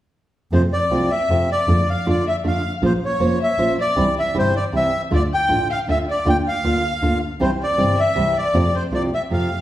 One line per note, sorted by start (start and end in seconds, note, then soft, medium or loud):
0.51 0.68 F2 medium
0.51 0.62 C3 medium
0.51 0.62 F3 medium
0.51 0.62 A3 medium
0.51 0.62 C4 medium
0.51 0.62 F4 medium
0.51 0.62 C5 soft
0.51 0.62 C5 medium
0.73 1.12 D5 medium
0.73 1.08 D5 medium
0.91 1.07 C2 soft
0.91 1.08 C3 soft
0.91 1.08 F3 soft
0.91 1.08 A3 soft
0.91 1.08 C4 medium
0.91 1.08 F4 medium
1.11 1.50 E5 medium
1.11 1.47 E5 medium
1.29 1.45 F2 soft
1.29 1.47 C3 soft
1.29 1.47 F3 soft
1.29 1.47 A3 soft
1.29 1.47 C4 medium
1.29 1.47 F4 medium
1.50 1.85 D5 medium
1.50 1.89 D5 medium
1.67 1.84 F2 medium
1.67 1.77 D3 medium
1.67 1.77 A3 medium
1.67 1.77 D4 medium
1.67 1.77 F4 medium
1.88 2.05 F5 medium
1.88 2.08 F5 medium
2.06 2.22 F2 soft
2.06 2.23 D3 soft
2.06 2.23 A3 medium
2.06 2.23 D4 soft
2.06 2.23 F4 medium
2.06 2.24 D5 medium
2.06 2.25 D5 medium
2.27 2.35 E5 medium
2.27 2.36 E5 medium
2.44 2.60 F2 soft
2.44 2.61 D3 soft
2.44 2.61 A3 soft
2.44 2.61 D4 medium
2.44 2.61 F4 medium
2.44 2.72 F5 medium
2.82 2.98 A#1 medium
2.82 2.91 F3 medium
2.82 2.91 A#3 medium
2.82 2.91 C#4 medium
2.82 2.91 F4 medium
2.82 2.92 C5 medium
2.82 2.93 C5 medium
3.04 3.38 C#5 medium
3.04 3.39 C#5 medium
3.20 3.37 F1 soft
3.20 3.37 F3 soft
3.20 3.37 A#3 medium
3.20 3.37 C#4 soft
3.20 3.37 F4 medium
3.20 3.37 C5 medium
3.42 3.76 E5 medium
3.42 3.77 E5 medium
3.58 3.74 A#1 soft
3.58 3.75 F3 soft
3.58 3.76 A#3 soft
3.58 3.76 C#4 medium
3.58 3.76 F4 medium
3.58 3.76 C5 medium
3.79 4.14 D5 medium
3.79 4.15 D5 medium
3.96 4.13 C2 medium
3.96 4.05 C3 medium
3.96 4.06 E3 medium
3.96 4.05 G3 medium
3.96 4.05 C4 medium
3.96 4.06 E4 medium
4.18 4.35 E5 medium
4.18 4.37 E5 medium
4.34 4.51 G1 soft
4.34 4.51 C3 soft
4.34 4.51 E3 medium
4.34 4.52 G3 medium
4.34 4.52 C4 soft
4.34 4.52 E4 medium
4.34 4.54 C5 medium
4.38 4.55 C5 medium
4.56 4.64 D5 medium
4.72 4.89 C2 soft
4.72 4.90 C3 soft
4.72 4.90 E3 soft
4.72 4.90 G3 soft
4.72 4.90 C4 soft
4.72 4.90 E4 medium
4.72 5.01 E5 medium
5.11 5.28 D2 medium
5.11 5.20 D3 medium
5.11 5.20 A3 medium
5.11 5.21 D4 medium
5.11 5.21 F4 medium
5.11 5.21 D5 medium
5.15 5.23 D5 medium
5.32 5.67 G5 medium
5.32 5.68 G5 medium
5.48 5.66 A1 soft
5.48 5.66 D3 soft
5.48 5.66 A3 soft
5.48 5.67 D4 soft
5.48 5.67 F4 medium
5.70 5.78 F5 medium
5.70 5.79 F5 medium
5.87 6.04 D2 soft
5.87 6.05 D3 soft
5.87 6.05 A3 medium
5.87 6.05 D4 medium
5.87 6.05 F4 medium
5.87 5.97 E5 medium
5.87 5.98 E5 medium
6.09 6.26 D5 medium
6.09 6.28 D5 medium
6.25 6.42 D2 medium
6.25 6.35 D3 medium
6.25 6.35 A#3 medium
6.25 6.35 D4 medium
6.25 6.35 F4 medium
6.25 6.36 G5 medium
6.25 6.37 G5 medium
6.45 7.17 F5 medium
6.45 7.19 F5 medium
6.64 6.80 D2 soft
6.64 6.81 D3 soft
6.64 6.81 A#3 medium
6.64 6.81 D4 medium
6.64 6.81 F4 medium
7.02 7.18 D2 soft
7.02 7.19 D3 soft
7.02 7.19 A#3 medium
7.02 7.19 D4 medium
7.02 7.19 F4 medium
7.40 7.56 C2 medium
7.40 7.49 C3 medium
7.40 7.49 E3 medium
7.40 7.49 G3 medium
7.40 7.50 C4 medium
7.40 7.50 E4 medium
7.40 7.49 C5 medium
7.40 7.51 C5 medium
7.60 7.95 D5 medium
7.60 8.00 D5 medium
7.77 7.94 G1 soft
7.77 7.95 C3 medium
7.77 7.95 E3 medium
7.77 7.95 G3 medium
7.77 7.95 C4 medium
7.77 7.95 E4 medium
7.97 8.33 E5 medium
7.97 8.38 E5 medium
8.15 8.33 C2 soft
8.15 8.33 C3 soft
8.15 8.33 E3 soft
8.15 8.33 G3 medium
8.15 8.33 C4 medium
8.15 8.33 E4 medium
8.35 8.71 D5 medium
8.35 8.76 D5 medium
8.54 8.70 F2 medium
8.54 8.63 C3 medium
8.54 8.63 F3 medium
8.54 8.63 A3 medium
8.54 8.63 C4 medium
8.54 8.63 F4 medium
8.74 8.83 C5 medium
8.92 9.08 C2 soft
8.92 9.09 C3 soft
8.92 9.09 F3 soft
8.92 9.09 A3 medium
8.92 9.09 C4 soft
8.92 9.10 F4 medium
8.92 9.03 D5 medium
9.14 9.22 E5 soft
9.14 9.22 E5 medium
9.30 9.47 F2 soft
9.30 9.48 C3 soft
9.30 9.48 F3 soft
9.30 9.48 A3 soft
9.30 9.48 C4 soft
9.30 9.48 F4 soft
9.30 9.59 F5 soft
9.30 9.59 F5 medium